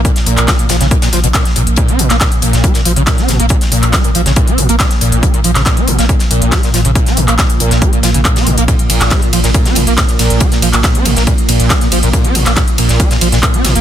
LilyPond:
<<
  \new Staff \with { instrumentName = "Acid bass" } { \clef bass \time 4/4 \key bes \minor \tempo 4 = 139 bes,16 r16 bes,8 aes16 bes,16 f16 des16 bes,16 bes,16 f16 ces16 bes,16 r16 bes,16 r16 | bes,16 des'16 bes,16 bes16 bes,16 r16 bes,8 aes16 bes,16 f16 des16 bes,16 des'16 bes,16 bes16 | bes,16 r16 bes,8 aes16 bes,16 f16 des16 bes,16 des'16 bes,16 bes16 bes,16 r16 bes,8 | aes16 bes,16 f16 des16 bes,16 des'16 bes,16 bes16 bes,16 r16 bes,8 aes16 bes,16 f16 des16 |
bes,16 des'16 bes,16 bes16 bes,16 r16 bes,8 aes16 bes,16 f16 des16 bes,16 des'16 bes,16 bes16 | bes,16 r16 bes,8 aes16 bes,16 f16 bes,16 bes,16 des'16 bes,16 bes16 bes,16 r16 bes,8 | aes16 bes,16 f16 bes,16 bes,16 des'16 bes,16 bes16 bes,16 r16 bes,8 aes16 bes,16 f16 bes,16 | bes,16 des'16 bes,16 bes16 bes,16 r16 bes,8 aes16 bes,16 f16 bes,16 bes,16 des'16 bes,16 bes16 | }
  \new Staff \with { instrumentName = "Ambient pad" } { \clef bass \time 4/4 \key bes \minor bes,1 | bes,1~ | bes,1~ | bes,1~ |
bes,1~ | bes,1~ | bes,1~ | bes,1 | }
  \new Staff \with { instrumentName = "Sub bass" } { \clef bass \time 4/4 \key bes \minor r8 bes,,16 bes,,16 r8 bes,,16 bes,,16 r8 bes,,16 bes,,16 r8 bes,,16 bes,,16 | r8 bes,,16 bes,,16 r8 bes,,16 bes,,16 r8 bes,,16 bes,,16 r8 bes,,16 bes,,16 | r8 bes,,16 bes,,16 r8 bes,,16 bes,,16 r8 bes,,16 bes,,16 r8 bes,,16 bes,,16 | r8 bes,,16 bes,,16 r8 bes,,16 bes,,16 r8 bes,,16 bes,,16 r8 bes,,16 bes,,16 |
r8 bes,,16 bes,,16 r8 bes,,16 bes,,16 r8 bes,,16 bes,,16 r8 bes,,16 bes,,16 | r8 bes,,16 bes,,16 r8 bes,,16 bes,,16 r8 bes,,16 bes,,16 r8 bes,,16 bes,,16 | r8 bes,,16 bes,,16 r8 bes,,16 bes,,16 r8 bes,,16 bes,,16 r8 bes,,16 bes,,16 | r8 bes,,16 bes,,16 r8 bes,,16 bes,,16 r8 bes,,16 bes,,16 r8 bes,,16 bes,,16 | }
  \new DrumStaff \with { instrumentName = "Drums" } \drummode { \time 4/4 <hh bd>16 <hh sn>16 <hh hho>16 <hc hh>16 <hc hh bd sn>16 hh16 <hh hho sn>16 <hh sn>16 <hh bd>16 <hh sn>16 <hho sn>16 hh16 <hc hh bd sn>16 <hh sn>16 <hh hho>16 hh16 | <hh bd>16 hh16 <hh hho>16 <hc hh sn>16 <hc hh bd sn>16 hh16 <hh hho>16 <hh sn>16 <hh bd>16 <hh sn>16 <hh hho>16 hh16 <hc hh bd sn>16 <hh sn>16 <hh hho sn>16 hh16 | <hh bd>16 <hh sn>16 <hh hho>16 <hc hh>16 <hc hh bd sn>16 hh16 <hh hho>16 <hh sn>16 <hh bd>16 hh16 <hh hho>16 hh16 <hc hh bd sn>16 <hh sn>16 <hh hho>16 hh16 | <hh bd>16 hh16 <hh hho>16 <hc hh sn>16 <hc hh bd sn>16 hh16 <hh hho>16 <hh sn>16 <hh bd>16 <hh sn>16 <hh hho>16 hh16 <hc hh bd sn>16 <hh sn>16 <hh hho sn>16 hh16 |
<hh bd>16 <hh sn>16 <hh hho>16 <hc hh>16 <hc hh bd sn>16 hh16 <hh hho>16 <hh sn>16 <hh bd>16 hh16 <hh hho sn>16 hh16 <hc hh bd>16 <hh sn>16 hho16 hh16 | <hh bd cymr>16 hh16 <hh hho cymr>16 <hc hh sn>16 <hc hh bd cymr sn>16 hh16 <hh hho cymr>16 <hh sn>16 <hh bd cymr>16 <hh sn>16 <hh hho cymr>16 hh16 <hc hh bd cymr sn>16 <hh sn>16 <hh hho cymr sn>16 hh16 | <hh bd cymr>16 <hh sn>16 <hh hho cymr>16 <hc hh>16 <hc hh bd cymr sn>16 hh16 <hh hho cymr>16 <hh sn>16 <hh bd cymr>16 hh16 <hh hho cymr>16 hh16 <hc hh bd cymr sn>16 <hh sn>16 <hh hho cymr>16 hh16 | <hh bd cymr>16 hh16 <hh hho cymr>16 <hc hh sn>16 <hc hh bd cymr sn>16 hh16 <hh hho cymr>16 <hh sn>16 <hh bd cymr>16 <hh sn>16 <hh hho cymr>16 <hh sn>16 <hc hh bd cymr>16 hh16 <hh hho cymr sn>16 hh16 | }
>>